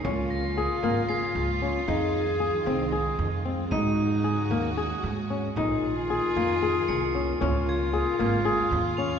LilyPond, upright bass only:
\new Staff \with { instrumentName = "Upright bass" } { \clef bass \time 7/8 \key des \major \tempo 4 = 114 des,4. aes,,4 des,4 | f,4. c,4 f,4 | aes,4. ees,4 aes,4 | bes,,4. f,4 c,4 |
des,4. aes,,4 ees,4 | }